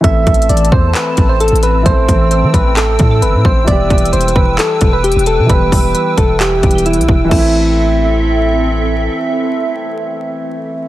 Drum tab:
CC |------------------------|------------------------|------------------------|------------------------|
HH |x--xxxxxx---x--x--xxxx--|x--x--x--x--x--x--x-----|x--xxxxxx---x--x--xxxx--|x--o--x--x--x--xxxxxx---|
CP |------------x-----------|------------x-----------|------------x-----------|------------x-----------|
BD |o--o-----o-----o--------|o--o-----o-----o-----o--|o--o-----o-----o--------|o--o-----o-----o-----o--|

CC |x-----------------------|------------------------|
HH |------------------------|------------------------|
CP |------------------------|------------------------|
BD |o-----------------------|------------------------|